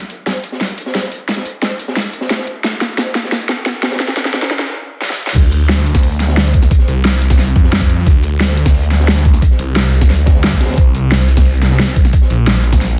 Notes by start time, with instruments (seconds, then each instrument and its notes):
0.10 closed hi-hat
0.26 kick, snare, closed hi-hat
0.43 closed hi-hat
0.52 snare
0.61 kick, snare, closed hi-hat, open hi-hat
0.70 closed hi-hat
0.78 closed hi-hat
0.86 snare
0.94 kick, snare, closed hi-hat
1.03 snare
1.12 closed hi-hat
1.29 kick, snare, closed hi-hat
1.37 snare
1.46 closed hi-hat
1.62 kick, snare, closed hi-hat
1.79 closed hi-hat
1.88 snare
1.96 kick, snare, closed hi-hat
2.06 closed hi-hat
2.13 closed hi-hat
2.21 snare
2.30 kick, snare, closed hi-hat
2.39 snare
2.47 closed hi-hat
2.64 kick, snare, closed hi-hat
2.81 snare, closed hi-hat
2.97 kick, snare, closed hi-hat
3.15 snare, closed hi-hat
3.24 snare
3.32 kick, snare, closed hi-hat, open hi-hat
3.40 closed hi-hat
3.49 snare, closed hi-hat
3.66 kick, snare, closed hi-hat
3.83 snare, closed hi-hat
3.91 snare, closed hi-hat
3.95 snare, closed hi-hat
3.99 kick, snare, closed hi-hat
4.08 snare
4.17 snare, closed hi-hat
4.25 snare
4.33 kick, snare, closed hi-hat
4.42 snare
4.51 snare, closed hi-hat
4.59 snare
5.01 snare
5.10 snare
5.27 snare
5.35 detuned saw bass D2, kick, closed hi-hat, crash
5.52 closed hi-hat
5.69 snare, closed hi-hat
5.86 closed hi-hat
5.94 kick, snare
6.03 closed hi-hat, open hi-hat
6.12 closed hi-hat
6.20 snare, closed hi-hat
6.28 snare
6.37 snare, closed hi-hat
6.46 snare
6.54 kick, closed hi-hat
6.63 snare
6.71 kick, closed hi-hat
6.78 snare
6.88 detuned saw bass C2, closed hi-hat
7.05 snare, closed hi-hat
7.21 closed hi-hat
7.30 kick, snare
7.39 detuned saw bass C2, snare, closed hi-hat
7.47 closed hi-hat
7.56 detuned saw bass F2, kick, closed hi-hat
7.64 snare
7.72 snare, closed hi-hat
7.81 kick, snare
7.90 closed hi-hat
8.07 detuned saw bass D2, kick, closed hi-hat
8.23 closed hi-hat
8.40 snare, closed hi-hat
8.57 closed hi-hat
8.66 kick, snare
8.74 closed hi-hat, open hi-hat
8.83 closed hi-hat
8.91 snare, closed hi-hat
9.00 snare
9.08 snare, closed hi-hat
9.17 snare
9.25 kick, closed hi-hat
9.34 snare
9.42 kick, closed hi-hat
9.51 snare
9.59 detuned saw bass C2, closed hi-hat
9.76 snare, closed hi-hat
9.93 closed hi-hat
10.01 kick, snare
10.10 detuned saw bass D2, snare, closed hi-hat
10.19 closed hi-hat
10.26 detuned saw bass D2, kick, snare, closed hi-hat
10.35 snare
10.44 detuned saw bass D2, snare, closed hi-hat
10.52 kick, snare
10.60 snare, closed hi-hat
10.65 snare, closed hi-hat
10.69 snare, closed hi-hat
10.73 snare, closed hi-hat
10.78 detuned saw bass C2, kick, closed hi-hat
10.95 closed hi-hat
11.11 snare, closed hi-hat
11.28 closed hi-hat
11.37 kick, snare
11.45 closed hi-hat, open hi-hat
11.54 closed hi-hat
11.62 snare, closed hi-hat
11.71 snare
11.79 snare, closed hi-hat
11.88 snare
11.96 kick, closed hi-hat
12.05 snare
12.13 kick, closed hi-hat
12.22 snare
12.30 detuned saw bass A#1, closed hi-hat
12.47 snare, closed hi-hat
12.64 closed hi-hat
12.72 kick, snare
12.81 detuned saw bass A#1, snare, closed hi-hat
12.90 closed hi-hat